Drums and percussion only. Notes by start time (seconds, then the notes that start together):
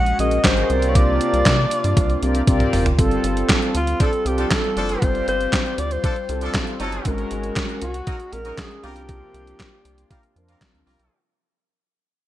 0.06 closed hi-hat
0.19 closed hi-hat
0.31 closed hi-hat
0.44 kick, snare, clap, closed hi-hat
0.57 closed hi-hat
0.70 closed hi-hat
0.82 closed hi-hat
0.95 kick, closed hi-hat
1.21 closed hi-hat
1.34 closed hi-hat
1.46 kick, snare, clap, closed hi-hat
1.71 closed hi-hat
1.84 closed hi-hat
1.97 kick, closed hi-hat
2.10 closed hi-hat
2.23 closed hi-hat
2.35 closed hi-hat
2.47 kick, closed hi-hat, high tom
2.60 closed hi-hat, mid tom
2.73 mid tom, open hi-hat
2.86 closed hi-hat, floor tom
2.99 kick, closed hi-hat
3.11 closed hi-hat
3.24 closed hi-hat
3.37 closed hi-hat
3.49 kick, snare, clap, closed hi-hat
3.62 closed hi-hat
3.75 closed hi-hat
3.87 closed hi-hat
4.00 kick, closed hi-hat
4.13 closed hi-hat
4.26 closed hi-hat
4.38 closed hi-hat
4.51 kick, snare, clap, closed hi-hat
4.64 closed hi-hat
4.77 closed hi-hat
4.89 closed hi-hat
5.02 kick, closed hi-hat
5.15 closed hi-hat
5.28 closed hi-hat
5.41 closed hi-hat
5.53 kick, snare, clap, closed hi-hat
5.66 closed hi-hat
5.78 closed hi-hat
5.91 closed hi-hat
6.04 kick, closed hi-hat
6.16 closed hi-hat
6.29 closed hi-hat
6.41 closed hi-hat
6.54 kick, snare, clap, closed hi-hat
6.67 closed hi-hat
6.80 closed hi-hat
6.92 closed hi-hat
7.05 kick, closed hi-hat
7.18 closed hi-hat
7.31 closed hi-hat
7.43 closed hi-hat
7.56 kick, snare, clap, closed hi-hat
7.69 closed hi-hat
7.82 closed hi-hat
7.94 closed hi-hat
8.07 kick, closed hi-hat
8.20 closed hi-hat
8.33 closed hi-hat
8.45 closed hi-hat
8.58 kick, snare, clap, closed hi-hat
8.71 closed hi-hat
8.84 closed hi-hat
8.96 closed hi-hat
9.09 kick, closed hi-hat
9.34 closed hi-hat
9.47 closed hi-hat
9.60 kick, snare, clap, closed hi-hat
9.85 closed hi-hat
9.98 closed hi-hat
10.11 kick, closed hi-hat
10.23 closed hi-hat
10.36 closed hi-hat
10.48 closed hi-hat
10.61 kick, snare, clap, closed hi-hat
10.75 closed hi-hat
10.87 open hi-hat
10.99 closed hi-hat